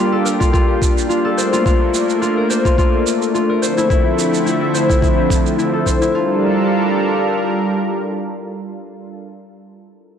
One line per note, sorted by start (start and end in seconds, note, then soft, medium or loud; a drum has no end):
0.00 1.34 G3 medium
0.00 1.34 A#3 medium
0.00 3.58 D4 medium
0.00 0.40 F4 medium
0.00 1.34 F4 medium
0.00 1.36 G4 medium
0.00 0.18 A#4 medium
0.12 0.31 A4 medium
0.25 1.31 A#4 medium
0.25 cabasa medium
0.40 0.53 F4 medium
0.40 kick medium
0.40 cabasa soft
0.53 1.09 F4 medium
0.53 kick loud
0.53 cabasa soft
0.82 kick medium
0.82 cabasa medium
0.98 cabasa soft
1.09 1.52 F4 medium
1.09 cabasa soft
1.25 2.43 A4 medium
1.37 6.11 A3 medium
1.37 3.60 A#3 medium
1.37 2.49 C5 medium
1.37 cabasa medium
1.53 1.65 F4 medium
1.53 cabasa soft
1.66 2.21 F4 medium
1.66 kick loud
1.66 cabasa soft
1.94 cabasa medium
2.10 cabasa soft
2.22 2.65 F4 medium
2.22 cabasa soft
2.37 3.49 A#4 medium
2.50 3.62 C5 medium
2.50 cabasa medium
2.65 2.78 F4 medium
2.65 kick medium
2.65 cabasa soft
2.78 3.34 F4 medium
2.78 kick loud
2.78 cabasa soft
3.07 cabasa medium
3.22 cabasa soft
3.34 3.84 F4 medium
3.34 cabasa soft
3.49 4.67 A#4 medium
3.61 6.12 D3 medium
3.61 6.12 F3 medium
3.61 6.12 C4 medium
3.61 6.12 E4 medium
3.61 4.74 C5 medium
3.61 cabasa medium
3.78 3.90 E4 medium
3.78 cabasa soft
3.90 4.45 E4 medium
3.90 kick loud
3.90 cabasa soft
4.19 cabasa medium
4.34 cabasa soft
4.46 4.89 E4 medium
4.46 cabasa soft
4.61 5.73 A4 medium
4.74 5.86 C5 medium
4.74 cabasa medium
4.89 5.01 E4 medium
4.89 kick medium
4.89 cabasa soft
5.02 5.58 E4 medium
5.02 kick medium
5.02 cabasa soft
5.30 kick medium
5.30 cabasa medium
5.46 cabasa soft
5.58 6.01 E4 medium
5.58 cabasa soft
5.73 7.93 A4 medium
5.86 7.84 C5 medium
5.86 kick soft
5.86 cabasa medium
6.02 6.21 E4 medium
6.02 cabasa soft
6.14 9.14 G3 medium
6.14 9.14 D4 medium
6.14 9.14 F4 medium
6.14 8.67 F4 medium
6.14 9.14 A4 medium
6.14 9.14 A#4 medium